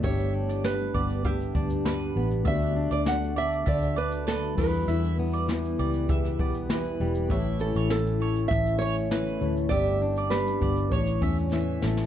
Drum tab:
CC |----------------|--------------x-|----------------|----------------|
SH |xx-xxx-xxxxxxx-x|xx-xxxxxxx-xxx-x|xx-xxxxxxx-xxx-x|xxxxxx-xxx-xxxxx|
SD |----o-------o---|----o-------o---|----o----o--o---|----o-------o---|
BD |o-----o-o-o-----|o-------o-----o-|--------o-o-----|o-------o-------|

CC |----------------|
SH |xx-xxxxxxx-x----|
SD |----o-------o-oo|
BD |o-----o-o-o-----|